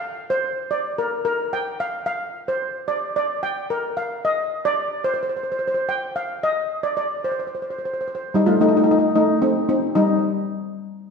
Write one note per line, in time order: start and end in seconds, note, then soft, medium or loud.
0.00 0.32 F5 medium
0.30 0.72 C5 medium
0.71 0.99 D5 medium
0.98 1.24 A#4 medium
1.25 1.53 A#4 medium
1.53 1.81 G5 medium
1.80 2.05 F5 medium
2.06 2.49 F5 medium
2.48 2.90 C5 medium
2.88 3.15 D5 medium
3.16 3.28 D5 medium
3.43 3.68 G5 medium
3.70 3.98 A#4 medium
3.97 4.09 F5 medium
4.25 4.63 D#5 medium
4.65 5.07 D5 medium
5.04 5.13 C5 medium
5.14 5.22 C5 medium
5.23 5.28 C5 medium
5.29 5.35 C5 soft
5.37 5.42 C5 medium
5.43 5.51 C5 soft
5.52 5.58 C5 medium
5.59 5.66 C5 medium
5.68 5.73 C5 medium
5.74 5.82 C5 medium
5.89 6.16 G5 medium
6.16 6.44 F5 medium
6.43 6.85 D#5 medium
6.83 6.96 D5 medium
6.97 7.09 D5 medium
7.24 7.30 C5 medium
7.32 7.38 C5 soft
7.40 7.46 C5 soft
7.47 7.54 C5 soft
7.55 7.61 C5 soft
7.62 7.69 C5 soft
7.70 7.77 C5 medium
7.78 7.84 C5 soft
7.85 7.92 C5 medium
7.94 7.99 C5 soft
8.01 8.06 C5 medium
8.08 8.14 C5 soft
8.15 8.21 C5 medium
8.34 8.46 G3 medium
8.34 8.48 D#4 medium
8.46 8.59 A3 medium
8.46 8.60 F4 medium
8.61 8.67 A3 medium
8.61 8.67 D#4 loud
8.69 8.76 D#4 medium
8.77 8.82 D#4 medium
8.84 8.90 D#4 medium
8.91 8.98 D#4 medium
8.99 9.06 D#4 medium
9.16 9.40 A3 medium
9.16 9.42 D#4 medium
9.42 9.68 C4 medium
9.42 9.67 D#4 medium
9.69 9.81 C4 medium
9.69 9.81 D#4 medium
9.95 10.46 G3 medium
9.95 10.46 D#4 medium